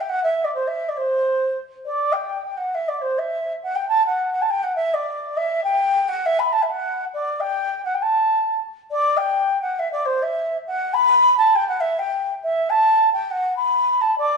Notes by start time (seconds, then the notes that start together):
0.08 F#5
0.23 E5
0.44 D5
0.54 C5
0.67 E5
0.88 D5
0.96 C5
1.85 D5
2.12 G5
2.57 F#5
2.74 E5
2.88 D5
3.01 C5
3.18 E5
3.62 F#5
3.75 G5
3.88 A5
4.06 F#5
4.32 F#5
4.41 A5
4.50 G5
4.63 F#5
4.75 E5
4.93 D5
5.36 E5
5.63 G5
6.08 F#5
6.25 E5
6.39 B5
6.52 A5
6.62 E5
6.69 F#5
7.13 D5
7.40 G5
7.84 F#5
7.94 G5
8.02 A5
8.91 D5
9.17 G5
9.61 F#5
9.79 E5
9.92 D5
10.05 C5
10.22 E5
10.67 F#5
10.93 B5
11.37 A5
11.55 G5
11.68 F#5
11.80 E5
11.98 G5
12.43 E5
12.69 A5
13.13 G5
13.30 F#5
13.56 B5
14.01 A5
14.18 D5